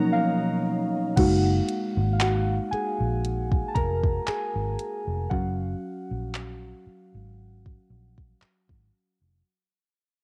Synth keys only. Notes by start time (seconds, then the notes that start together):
Already playing: F3 F#3 A#3 C#4 D#4
0.12 F5
1.16 G#3 A#3 D#4 F#4 F5 F#5
2.13 F5
2.19 F#4 F#5
2.71 G#4 G#5
3.68 A5
3.75 A#4 A#5
4.26 G#4 G#5
5.30 F#3 C#4 F#4 F5 F#5